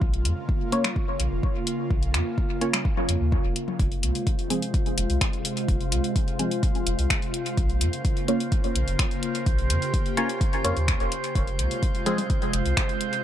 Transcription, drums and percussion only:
0.02 kick
0.14 closed hi-hat
0.25 closed hi-hat
0.49 kick
0.72 closed hi-hat
0.84 finger snap, low conga
0.96 kick
1.20 closed hi-hat
1.43 kick
1.67 closed hi-hat
1.91 kick
2.03 closed hi-hat
2.14 finger snap, closed hi-hat
2.38 kick
2.61 closed hi-hat
2.73 finger snap, low conga
2.85 kick
2.97 high tom
3.09 closed hi-hat
3.32 kick
3.56 closed hi-hat
3.68 high tom
3.79 kick, closed hi-hat
3.92 closed hi-hat
4.03 closed hi-hat
4.15 closed hi-hat
4.27 kick, closed hi-hat
4.39 closed hi-hat
4.50 closed hi-hat
4.62 closed hi-hat
4.74 kick, closed hi-hat
4.86 closed hi-hat
4.98 closed hi-hat
5.10 closed hi-hat
5.21 finger snap, kick, closed hi-hat
5.33 closed hi-hat
5.45 closed hi-hat
5.57 closed hi-hat
5.68 kick, closed hi-hat
5.81 closed hi-hat
5.92 closed hi-hat
6.04 closed hi-hat
6.16 kick, closed hi-hat
6.28 closed hi-hat
6.39 closed hi-hat
6.51 closed hi-hat
6.63 kick, closed hi-hat
6.75 closed hi-hat
6.87 closed hi-hat
6.99 closed hi-hat
7.10 finger snap, kick, closed hi-hat
7.22 closed hi-hat
7.34 closed hi-hat
7.46 closed hi-hat
7.57 kick, closed hi-hat
7.70 closed hi-hat
7.81 closed hi-hat
7.93 closed hi-hat
8.05 kick, closed hi-hat
8.17 closed hi-hat
8.28 closed hi-hat
8.40 closed hi-hat
8.52 kick, closed hi-hat
8.64 closed hi-hat
8.76 closed hi-hat
8.88 closed hi-hat
8.99 finger snap, kick, closed hi-hat
9.11 closed hi-hat
9.23 closed hi-hat
9.35 closed hi-hat
9.46 kick, closed hi-hat
9.58 closed hi-hat
9.70 closed hi-hat
9.82 closed hi-hat
9.94 kick, closed hi-hat
10.06 closed hi-hat
10.17 closed hi-hat
10.29 closed hi-hat
10.41 kick, closed hi-hat
10.53 closed hi-hat
10.65 closed hi-hat
10.77 closed hi-hat
10.88 finger snap, kick, closed hi-hat
11.00 closed hi-hat
11.12 closed hi-hat
11.24 closed hi-hat
11.35 kick, closed hi-hat
11.47 closed hi-hat
11.59 closed hi-hat
11.71 closed hi-hat
11.83 kick, closed hi-hat
11.95 closed hi-hat
12.06 closed hi-hat
12.18 closed hi-hat, low conga
12.30 kick, closed hi-hat
12.42 closed hi-hat
12.53 closed hi-hat
12.66 closed hi-hat
12.77 finger snap, kick, closed hi-hat
12.89 closed hi-hat
13.01 closed hi-hat
13.13 closed hi-hat

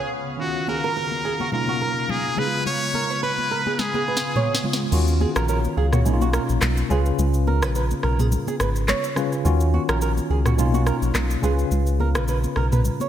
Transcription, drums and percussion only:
0.68 high conga
1.11 high conga
1.40 high conga
1.52 low conga
1.67 high conga
2.09 high conga, low conga
2.37 low conga
2.66 low conga
2.94 high conga
3.38 high conga
3.66 high conga
3.79 snare, low conga
3.94 high conga
4.17 snare
4.36 mid tom, high conga, low conga
4.55 snare
4.64 low conga
4.73 snare
4.92 crash, low conga, shaker
5.08 shaker
5.21 high conga
5.36 cross-stick, shaker
5.48 shaker
5.64 high conga, shaker
5.93 cross-stick, mid tom, high conga, shaker
6.06 low conga, shaker
6.21 high conga, shaker
6.33 cross-stick, shaker
6.49 shaker
6.61 cross-stick, clap, high conga, low conga, shaker
6.77 shaker
6.90 low conga, shaker
7.06 shaker
7.19 low conga, shaker
7.34 shaker
7.47 high conga
7.62 cross-stick, shaker
7.75 shaker
7.91 high conga, shaker
8.03 cross-stick
8.19 mid tom, high conga, shaker
8.32 low conga, shaker
8.47 high conga, shaker
8.60 cross-stick, shaker
8.76 shaker
8.88 cross-stick, clap, high conga, low conga, shaker
9.04 shaker
9.16 cross-stick, low conga, shaker
9.32 shaker
9.45 low conga, shaker
9.60 shaker
9.74 high conga
9.89 cross-stick, shaker
10.01 shaker
10.17 high conga, shaker
10.46 cross-stick, mid tom, high conga, shaker
10.58 low conga, shaker
10.74 high conga, shaker
10.87 cross-stick, shaker
11.02 shaker
11.15 cross-stick, clap, high conga, low conga, shaker
11.30 shaker
11.43 low conga, shaker
11.59 shaker
11.71 low conga, shaker
11.87 shaker
12.00 high conga
12.15 cross-stick, shaker
12.28 shaker
12.44 high conga, shaker
12.56 cross-stick
12.72 mid tom, high conga, shaker
12.85 low conga, shaker
13.00 high conga, shaker

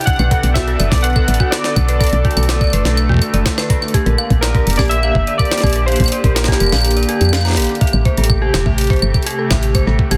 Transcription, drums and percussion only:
0.01 closed hi-hat
0.04 kick, closed hi-hat
0.07 closed hi-hat
0.10 closed hi-hat
0.13 closed hi-hat
0.16 closed hi-hat
0.19 closed hi-hat, claves
0.31 kick, closed hi-hat
0.43 closed hi-hat
0.55 kick, snare, closed hi-hat, claves
0.68 closed hi-hat
0.80 closed hi-hat, claves
0.92 kick, snare, closed hi-hat
0.95 closed hi-hat
0.98 closed hi-hat
1.01 closed hi-hat
1.04 closed hi-hat
1.16 kick, claves
1.28 closed hi-hat
1.34 closed hi-hat
1.40 kick, claves
1.52 snare, closed hi-hat
1.64 snare, closed hi-hat
1.76 kick, closed hi-hat, claves
1.88 closed hi-hat
2.01 kick, closed hi-hat, claves
2.04 closed hi-hat
2.07 closed hi-hat
2.09 closed hi-hat
2.13 closed hi-hat
2.25 kick, closed hi-hat
2.31 closed hi-hat
2.37 closed hi-hat, claves
2.43 closed hi-hat
2.49 snare, closed hi-hat
2.61 kick, closed hi-hat, claves
2.64 claves
2.67 claves
2.70 closed hi-hat, claves
2.85 snare, closed hi-hat
2.97 closed hi-hat, claves
3.09 kick
3.12 kick
3.14 kick
3.17 kick
3.19 kick, closed hi-hat, claves
3.34 closed hi-hat
3.46 kick, snare, closed hi-hat
3.58 snare, closed hi-hat, claves
3.70 kick, closed hi-hat
3.82 claves
3.88 closed hi-hat
3.94 kick, closed hi-hat
4.06 closed hi-hat
4.18 claves
4.30 kick, closed hi-hat
4.43 snare, closed hi-hat, claves
4.55 kick, closed hi-hat
4.67 closed hi-hat
4.70 closed hi-hat
4.73 closed hi-hat
4.76 kick, snare, closed hi-hat
4.79 closed hi-hat, claves
4.82 closed hi-hat
4.85 closed hi-hat
4.88 closed hi-hat
4.91 closed hi-hat
5.03 claves
5.15 kick
5.27 closed hi-hat
5.39 kick, closed hi-hat, claves
5.45 closed hi-hat
5.51 snare, closed hi-hat
5.55 snare
5.58 snare, closed hi-hat
5.61 kick, snare, closed hi-hat, claves
5.67 closed hi-hat
5.70 closed hi-hat
5.73 closed hi-hat
5.76 closed hi-hat
5.88 closed hi-hat
5.92 closed hi-hat
5.96 closed hi-hat
6.00 kick, closed hi-hat
6.04 closed hi-hat, claves
6.08 closed hi-hat
6.12 closed hi-hat
6.24 kick, closed hi-hat
6.36 snare, closed hi-hat
6.44 snare
6.48 kick, closed hi-hat
6.52 snare
6.60 closed hi-hat, claves
6.63 claves
6.66 claves
6.69 snare, closed hi-hat, claves
6.72 claves
6.75 closed hi-hat, claves
6.78 closed hi-hat, claves
6.81 closed hi-hat, claves
6.85 claves
6.88 closed hi-hat, claves
6.94 closed hi-hat, claves
6.97 claves
7.00 closed hi-hat, claves
7.09 closed hi-hat
7.21 closed hi-hat, claves
7.25 claves
7.29 claves
7.33 snare, closed hi-hat, claves
7.37 claves
7.41 snare, closed hi-hat, claves
7.45 snare, claves
7.50 snare
7.52 snare
7.55 snare, closed hi-hat
7.60 closed hi-hat
7.62 closed hi-hat
7.64 closed hi-hat
7.67 closed hi-hat
7.69 closed hi-hat
7.75 closed hi-hat
7.81 kick, closed hi-hat
7.87 closed hi-hat
7.93 claves
8.05 kick, closed hi-hat
8.17 closed hi-hat
8.24 closed hi-hat
8.30 kick, claves
8.54 snare, claves
8.66 kick
8.78 closed hi-hat
8.81 closed hi-hat
8.84 closed hi-hat
8.87 closed hi-hat
8.90 kick, closed hi-hat
8.96 closed hi-hat
8.99 closed hi-hat, claves
9.14 kick, closed hi-hat, claves
9.22 closed hi-hat
9.26 closed hi-hat
9.30 closed hi-hat
9.51 kick, snare, claves
9.63 closed hi-hat
9.75 kick, closed hi-hat, claves
9.99 kick
10.11 closed hi-hat, claves

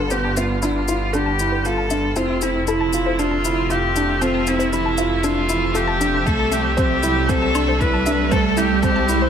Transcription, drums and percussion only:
0.10 shaker
0.37 shaker
0.62 shaker
0.88 shaker
1.14 shaker
1.39 shaker
1.65 shaker
1.90 shaker
2.16 shaker
2.42 shaker
2.67 shaker
2.93 shaker
3.19 shaker
3.45 shaker
3.70 shaker
3.96 shaker
4.22 shaker
4.47 shaker
4.60 shaker
4.73 shaker
4.98 shaker
5.24 shaker
5.49 shaker
5.75 shaker
6.01 shaker
6.26 kick, shaker
6.52 shaker
6.78 kick, shaker
7.03 shaker
7.29 kick, shaker
7.55 low woodblock, shaker
7.81 kick, shaker
8.06 shaker
8.32 kick, shaker
8.57 shaker
8.83 kick, shaker
9.09 shaker

